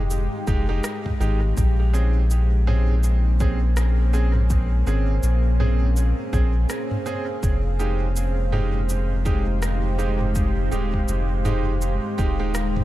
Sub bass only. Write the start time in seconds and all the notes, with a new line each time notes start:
Already playing: F1
0.47 F1
1.20 G#1
1.57 A#1
4.87 G#1
5.23 A#1
6.33 A#1
7.43 F1
10.71 D#1
11.08 F1
12.18 D#1